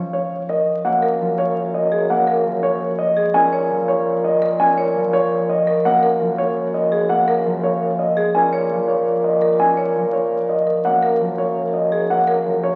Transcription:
Already playing: harp F3 A#3 C#4
0.13 grand piano C#5
0.49 marimba A#4, grand piano D#5
0.85 bassoon F#2, harp A#3, grand piano F#5
1.02 marimba A#4
1.21 harp F3
1.38 grand piano C#5
1.74 grand piano D#5
1.92 marimba G#4
2.10 harp A#3, grand piano F#5
2.27 marimba A#4
2.46 harp F3
2.63 grand piano C#5
2.99 grand piano D#5
3.17 marimba G#4
3.34 bassoon A#2, harp C#4, grand piano G#5
3.53 marimba C#5
3.70 harp F3
3.88 grand piano C#5
4.24 grand piano D#5
4.42 marimba A#4
4.60 harp C#4, grand piano G#5
4.78 marimba C#5
4.96 harp F3
5.13 grand piano C#5
5.49 grand piano D#5
5.67 marimba A#4
5.85 bassoon F#2, harp A#3, grand piano F#5
6.03 marimba A#4
6.21 harp F3
6.38 grand piano C#5
6.74 grand piano D#5
6.92 marimba G#4
7.09 harp A#3, grand piano F#5
7.28 marimba A#4
7.46 harp F3
7.63 grand piano C#5
7.99 grand piano D#5
8.17 marimba G#4
8.35 bassoon A#2, harp C#4, grand piano G#5
8.53 marimba C#5
8.71 harp F3
8.88 grand piano C#5
9.24 grand piano D#5
9.42 marimba A#4
9.60 harp C#4, grand piano G#5
9.77 marimba C#5
9.96 harp F3
10.13 grand piano C#5
10.49 grand piano D#5
10.67 marimba A#4
10.85 bassoon F#2, harp A#3, grand piano F#5
11.03 marimba A#4
11.20 harp F3
11.38 grand piano C#5
11.74 grand piano D#5
11.92 marimba G#4
12.10 harp A#3, grand piano F#5
12.28 marimba A#4
12.46 harp F3
12.63 grand piano C#5

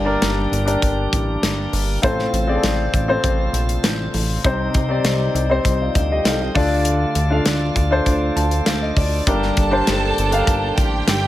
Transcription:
Already playing: analog synth bass G1, grand piano G2 D4 G4 A#4 D5, tonewheel organ D3 A#3 G4
0.05 grand piano D4 G4 A#4 D5
0.22 analog synth bass G1, snare, closed hi-hat
0.52 analog synth bass G1, closed hi-hat
0.65 grand piano D4 G4 A#4 D5, closed hi-hat
0.82 analog synth bass G1, kick, closed hi-hat
1.13 analog synth bass A1, kick, closed hi-hat
1.43 analog synth bass G1, snare, closed hi-hat
1.73 analog synth bass G1, open hi-hat
2.02 analog synth bass A1, grand piano A2 C4 F4 A4 C5, tonewheel organ C3 A3 F4, kick, closed hi-hat
2.19 snare
2.33 analog synth bass A1, closed hi-hat
2.47 grand piano C4 F4 G#4 D5
2.55 grand piano A4
2.63 analog synth bass A1, snare, closed hi-hat
2.94 analog synth bass A1, kick, closed hi-hat
3.08 grand piano C4 F4 A4 C5
3.24 analog synth bass A1, kick, closed hi-hat
3.53 analog synth bass A#1, closed hi-hat
3.69 closed hi-hat
3.83 analog synth bass A1, snare, closed hi-hat
4.14 analog synth bass A1, open hi-hat
4.44 analog synth bass C2, grand piano C3 C4 D#4 G4 C5, tonewheel organ G3 D#4, kick, closed hi-hat
4.74 analog synth bass C2, kick, closed hi-hat
4.89 grand piano C4 D#4 G4 D5
5.04 analog synth bass C2, snare, closed hi-hat
5.35 analog synth bass C2, closed hi-hat
5.50 grand piano C4 D#4 G4 C5
5.65 analog synth bass C2, kick, closed hi-hat
5.81 grand piano F4 D5
5.95 analog synth bass D2, kick, closed hi-hat
6.12 grand piano G4 D#5
6.25 analog synth bass C2, grand piano A4 F5, snare, closed hi-hat
6.42 grand piano G4 D#5
6.55 analog synth bass D2, grand piano D3 D4 F4 A4 D5, tonewheel organ D3 A3 F4, kick, open hi-hat
6.85 closed hi-hat
7.15 analog synth bass D2, closed hi-hat
7.30 grand piano D4 F4 A4 F5
7.46 analog synth bass D2, snare, closed hi-hat
7.76 analog synth bass D2, kick, closed hi-hat
7.91 grand piano D4 F4 A4 C5
8.06 analog synth bass D2, kick, closed hi-hat
8.36 analog synth bass D2, grand piano A5, closed hi-hat
8.51 closed hi-hat
8.66 analog synth bass D2, grand piano F5, snare, closed hi-hat
8.82 grand piano D#5
8.96 analog synth bass D2, grand piano D5, kick, open hi-hat
9.27 analog synth bass G1, grand piano G2 D4 G4 A#4 D5, tonewheel organ A#3 G4, violin section A4 A5, kick, closed hi-hat
9.43 snare
9.57 analog synth bass G1, kick, closed hi-hat
9.71 grand piano D4 G4 A#4 C5
9.87 analog synth bass G1, snare, closed hi-hat
10.18 analog synth bass G1, closed hi-hat
10.31 grand piano D4 G4 A#4 F5, closed hi-hat
10.47 analog synth bass G1, kick, closed hi-hat
10.77 analog synth bass A1, violin section G4 G5, kick, closed hi-hat
11.07 analog synth bass G1, snare, closed hi-hat

